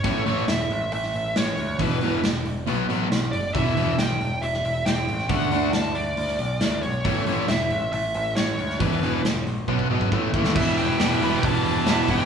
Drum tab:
CC |----------------|----------------|----------------|----------------|
HH |o-o-o-o-o-o-o-o-|o-o-o-o-o-o-o-o-|o-o-o-o-o-o-o-o-|o-o-o-o-o-o-o-o-|
SD |----o----o--o---|----o-------o---|----o----o--o--o|----o----o--o---|
BD |o---------------|o---------------|o---------------|o---------------|

CC |----------------|----------------|x---------------|
HH |o-o-o-o-o-o-o-o-|o-o-o-o---------|--o-o-o-o-o-o-o-|
SD |----o-------o--o|----o----------o|----o-------o---|
BD |o---------------|o-------oo-oo-o-|o-------o-----o-|